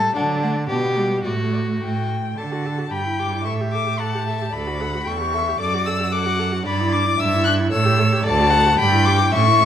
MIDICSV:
0, 0, Header, 1, 5, 480
1, 0, Start_track
1, 0, Key_signature, 2, "major"
1, 0, Tempo, 551978
1, 133, Time_signature, 2, 2, 24, 8
1, 2536, Tempo, 535714
1, 8569, End_track
2, 0, Start_track
2, 0, Title_t, "Violin"
2, 0, Program_c, 0, 40
2, 132, Note_on_c, 0, 78, 55
2, 202, Note_off_c, 0, 78, 0
2, 370, Note_on_c, 0, 78, 47
2, 439, Note_off_c, 0, 78, 0
2, 603, Note_on_c, 0, 74, 44
2, 673, Note_off_c, 0, 74, 0
2, 840, Note_on_c, 0, 74, 43
2, 910, Note_off_c, 0, 74, 0
2, 1084, Note_on_c, 0, 74, 41
2, 1154, Note_off_c, 0, 74, 0
2, 1331, Note_on_c, 0, 74, 36
2, 1400, Note_off_c, 0, 74, 0
2, 1585, Note_on_c, 0, 79, 63
2, 2064, Note_on_c, 0, 81, 53
2, 2077, Note_off_c, 0, 79, 0
2, 2533, Note_on_c, 0, 83, 58
2, 2547, Note_off_c, 0, 81, 0
2, 2782, Note_on_c, 0, 86, 61
2, 2796, Note_off_c, 0, 83, 0
2, 3007, Note_off_c, 0, 86, 0
2, 3012, Note_on_c, 0, 85, 61
2, 3084, Note_off_c, 0, 85, 0
2, 3262, Note_on_c, 0, 86, 67
2, 3500, Note_on_c, 0, 81, 66
2, 3513, Note_off_c, 0, 86, 0
2, 3979, Note_on_c, 0, 83, 73
2, 3992, Note_off_c, 0, 81, 0
2, 4467, Note_on_c, 0, 85, 83
2, 4481, Note_off_c, 0, 83, 0
2, 4932, Note_off_c, 0, 85, 0
2, 4938, Note_on_c, 0, 86, 84
2, 5174, Note_on_c, 0, 88, 82
2, 5187, Note_off_c, 0, 86, 0
2, 5410, Note_on_c, 0, 86, 76
2, 5424, Note_off_c, 0, 88, 0
2, 5651, Note_off_c, 0, 86, 0
2, 5895, Note_on_c, 0, 83, 87
2, 6132, Note_on_c, 0, 86, 90
2, 6146, Note_off_c, 0, 83, 0
2, 6368, Note_on_c, 0, 88, 98
2, 6381, Note_off_c, 0, 86, 0
2, 6591, Note_off_c, 0, 88, 0
2, 6597, Note_on_c, 0, 90, 101
2, 6668, Note_off_c, 0, 90, 0
2, 6834, Note_on_c, 0, 88, 94
2, 7306, Note_off_c, 0, 88, 0
2, 7320, Note_on_c, 0, 81, 108
2, 7787, Note_off_c, 0, 81, 0
2, 7799, Note_on_c, 0, 83, 103
2, 8033, Note_on_c, 0, 86, 104
2, 8047, Note_off_c, 0, 83, 0
2, 8272, Note_off_c, 0, 86, 0
2, 8277, Note_on_c, 0, 85, 112
2, 8569, Note_off_c, 0, 85, 0
2, 8569, End_track
3, 0, Start_track
3, 0, Title_t, "Violin"
3, 0, Program_c, 1, 40
3, 0, Note_on_c, 1, 69, 91
3, 128, Note_off_c, 1, 69, 0
3, 134, Note_on_c, 1, 62, 77
3, 589, Note_off_c, 1, 62, 0
3, 595, Note_on_c, 1, 67, 73
3, 1072, Note_off_c, 1, 67, 0
3, 1083, Note_on_c, 1, 66, 62
3, 1808, Note_off_c, 1, 66, 0
3, 2532, Note_on_c, 1, 79, 57
3, 2984, Note_off_c, 1, 79, 0
3, 3008, Note_on_c, 1, 76, 53
3, 3499, Note_on_c, 1, 78, 57
3, 3513, Note_off_c, 1, 76, 0
3, 3742, Note_off_c, 1, 78, 0
3, 3747, Note_on_c, 1, 76, 52
3, 3971, Note_off_c, 1, 76, 0
3, 3977, Note_on_c, 1, 74, 49
3, 4224, Note_on_c, 1, 78, 54
3, 4237, Note_off_c, 1, 74, 0
3, 4435, Note_off_c, 1, 78, 0
3, 4440, Note_on_c, 1, 79, 62
3, 4512, Note_off_c, 1, 79, 0
3, 4691, Note_on_c, 1, 76, 60
3, 4932, Note_off_c, 1, 76, 0
3, 4947, Note_on_c, 1, 74, 60
3, 5403, Note_off_c, 1, 74, 0
3, 5408, Note_on_c, 1, 78, 78
3, 5878, Note_off_c, 1, 78, 0
3, 5889, Note_on_c, 1, 74, 71
3, 6357, Note_off_c, 1, 74, 0
3, 6367, Note_on_c, 1, 76, 80
3, 6826, Note_off_c, 1, 76, 0
3, 6832, Note_on_c, 1, 73, 76
3, 7305, Note_on_c, 1, 74, 87
3, 7318, Note_off_c, 1, 73, 0
3, 7541, Note_on_c, 1, 78, 89
3, 7555, Note_off_c, 1, 74, 0
3, 7789, Note_off_c, 1, 78, 0
3, 7797, Note_on_c, 1, 79, 98
3, 8273, Note_on_c, 1, 76, 87
3, 8287, Note_off_c, 1, 79, 0
3, 8569, Note_off_c, 1, 76, 0
3, 8569, End_track
4, 0, Start_track
4, 0, Title_t, "Viola"
4, 0, Program_c, 2, 41
4, 0, Note_on_c, 2, 55, 53
4, 137, Note_on_c, 2, 54, 56
4, 150, Note_off_c, 2, 55, 0
4, 371, Note_off_c, 2, 54, 0
4, 377, Note_on_c, 2, 57, 52
4, 447, Note_off_c, 2, 57, 0
4, 612, Note_on_c, 2, 59, 52
4, 858, Note_on_c, 2, 55, 47
4, 871, Note_off_c, 2, 59, 0
4, 1102, Note_on_c, 2, 57, 44
4, 1115, Note_off_c, 2, 55, 0
4, 1833, Note_off_c, 2, 57, 0
4, 2065, Note_on_c, 2, 69, 39
4, 2188, Note_on_c, 2, 66, 39
4, 2201, Note_off_c, 2, 69, 0
4, 2313, Note_on_c, 2, 69, 39
4, 2326, Note_off_c, 2, 66, 0
4, 2417, Note_on_c, 2, 66, 39
4, 2430, Note_off_c, 2, 69, 0
4, 2526, Note_off_c, 2, 66, 0
4, 2531, Note_on_c, 2, 67, 35
4, 2659, Note_on_c, 2, 64, 36
4, 2673, Note_off_c, 2, 67, 0
4, 2780, Note_on_c, 2, 67, 40
4, 2793, Note_off_c, 2, 64, 0
4, 2900, Note_on_c, 2, 64, 39
4, 2913, Note_off_c, 2, 67, 0
4, 3020, Note_off_c, 2, 64, 0
4, 3027, Note_on_c, 2, 69, 43
4, 3152, Note_on_c, 2, 67, 41
4, 3166, Note_off_c, 2, 69, 0
4, 3279, Note_on_c, 2, 69, 42
4, 3292, Note_off_c, 2, 67, 0
4, 3385, Note_on_c, 2, 67, 40
4, 3399, Note_off_c, 2, 69, 0
4, 3504, Note_off_c, 2, 67, 0
4, 3510, Note_on_c, 2, 69, 41
4, 3638, Note_on_c, 2, 67, 38
4, 3651, Note_off_c, 2, 69, 0
4, 3757, Note_on_c, 2, 69, 42
4, 3770, Note_off_c, 2, 67, 0
4, 3881, Note_on_c, 2, 67, 38
4, 3895, Note_off_c, 2, 69, 0
4, 3993, Note_off_c, 2, 67, 0
4, 3999, Note_on_c, 2, 69, 46
4, 4107, Note_on_c, 2, 66, 45
4, 4121, Note_off_c, 2, 69, 0
4, 4232, Note_on_c, 2, 69, 42
4, 4245, Note_off_c, 2, 66, 0
4, 4355, Note_on_c, 2, 66, 46
4, 4368, Note_off_c, 2, 69, 0
4, 4470, Note_off_c, 2, 66, 0
4, 4475, Note_on_c, 2, 69, 42
4, 4591, Note_on_c, 2, 67, 45
4, 4604, Note_off_c, 2, 69, 0
4, 4706, Note_on_c, 2, 69, 45
4, 4719, Note_off_c, 2, 67, 0
4, 4834, Note_on_c, 2, 67, 46
4, 4847, Note_off_c, 2, 69, 0
4, 4944, Note_off_c, 2, 67, 0
4, 4949, Note_on_c, 2, 69, 55
4, 5069, Note_on_c, 2, 66, 53
4, 5082, Note_off_c, 2, 69, 0
4, 5187, Note_on_c, 2, 69, 49
4, 5200, Note_off_c, 2, 66, 0
4, 5301, Note_on_c, 2, 66, 50
4, 5314, Note_off_c, 2, 69, 0
4, 5420, Note_off_c, 2, 66, 0
4, 5424, Note_on_c, 2, 69, 53
4, 5532, Note_on_c, 2, 66, 51
4, 5546, Note_off_c, 2, 69, 0
4, 5652, Note_on_c, 2, 69, 52
4, 5665, Note_off_c, 2, 66, 0
4, 5765, Note_on_c, 2, 66, 51
4, 5778, Note_off_c, 2, 69, 0
4, 5888, Note_off_c, 2, 66, 0
4, 5892, Note_on_c, 2, 62, 64
4, 6014, Note_on_c, 2, 64, 60
4, 6028, Note_off_c, 2, 62, 0
4, 6130, Note_on_c, 2, 62, 58
4, 6144, Note_off_c, 2, 64, 0
4, 6254, Note_on_c, 2, 64, 55
4, 6267, Note_off_c, 2, 62, 0
4, 6368, Note_off_c, 2, 64, 0
4, 6374, Note_on_c, 2, 62, 57
4, 6497, Note_on_c, 2, 64, 58
4, 6510, Note_off_c, 2, 62, 0
4, 6608, Note_on_c, 2, 62, 59
4, 6621, Note_off_c, 2, 64, 0
4, 6718, Note_on_c, 2, 64, 64
4, 6732, Note_off_c, 2, 62, 0
4, 6829, Note_off_c, 2, 64, 0
4, 6834, Note_on_c, 2, 69, 65
4, 6960, Note_on_c, 2, 67, 68
4, 6974, Note_off_c, 2, 69, 0
4, 7083, Note_on_c, 2, 69, 66
4, 7096, Note_off_c, 2, 67, 0
4, 7201, Note_on_c, 2, 67, 71
4, 7215, Note_off_c, 2, 69, 0
4, 7318, Note_off_c, 2, 67, 0
4, 7323, Note_on_c, 2, 69, 66
4, 7438, Note_on_c, 2, 66, 67
4, 7452, Note_off_c, 2, 69, 0
4, 7559, Note_on_c, 2, 69, 65
4, 7572, Note_off_c, 2, 66, 0
4, 7685, Note_on_c, 2, 66, 62
4, 7698, Note_off_c, 2, 69, 0
4, 7791, Note_off_c, 2, 66, 0
4, 7796, Note_on_c, 2, 67, 77
4, 7918, Note_on_c, 2, 64, 69
4, 7931, Note_off_c, 2, 67, 0
4, 8043, Note_on_c, 2, 67, 67
4, 8056, Note_off_c, 2, 64, 0
4, 8162, Note_on_c, 2, 64, 64
4, 8175, Note_off_c, 2, 67, 0
4, 8278, Note_off_c, 2, 64, 0
4, 8283, Note_on_c, 2, 61, 65
4, 8404, Note_on_c, 2, 64, 65
4, 8418, Note_off_c, 2, 61, 0
4, 8530, Note_on_c, 2, 61, 62
4, 8543, Note_off_c, 2, 64, 0
4, 8569, Note_off_c, 2, 61, 0
4, 8569, End_track
5, 0, Start_track
5, 0, Title_t, "Cello"
5, 0, Program_c, 3, 42
5, 145, Note_on_c, 3, 50, 62
5, 557, Note_off_c, 3, 50, 0
5, 616, Note_on_c, 3, 47, 57
5, 1035, Note_off_c, 3, 47, 0
5, 1095, Note_on_c, 3, 45, 54
5, 1525, Note_off_c, 3, 45, 0
5, 1583, Note_on_c, 3, 45, 46
5, 2011, Note_off_c, 3, 45, 0
5, 2075, Note_on_c, 3, 50, 50
5, 2507, Note_off_c, 3, 50, 0
5, 2544, Note_on_c, 3, 43, 48
5, 3031, Note_on_c, 3, 45, 47
5, 3045, Note_off_c, 3, 43, 0
5, 3983, Note_off_c, 3, 45, 0
5, 3989, Note_on_c, 3, 38, 53
5, 4459, Note_off_c, 3, 38, 0
5, 4473, Note_on_c, 3, 40, 57
5, 4937, Note_off_c, 3, 40, 0
5, 4944, Note_on_c, 3, 42, 61
5, 5874, Note_off_c, 3, 42, 0
5, 5898, Note_on_c, 3, 43, 78
5, 6315, Note_off_c, 3, 43, 0
5, 6375, Note_on_c, 3, 43, 81
5, 6791, Note_off_c, 3, 43, 0
5, 6849, Note_on_c, 3, 45, 88
5, 7267, Note_off_c, 3, 45, 0
5, 7332, Note_on_c, 3, 38, 87
5, 7747, Note_off_c, 3, 38, 0
5, 7807, Note_on_c, 3, 43, 96
5, 8231, Note_off_c, 3, 43, 0
5, 8295, Note_on_c, 3, 45, 85
5, 8569, Note_off_c, 3, 45, 0
5, 8569, End_track
0, 0, End_of_file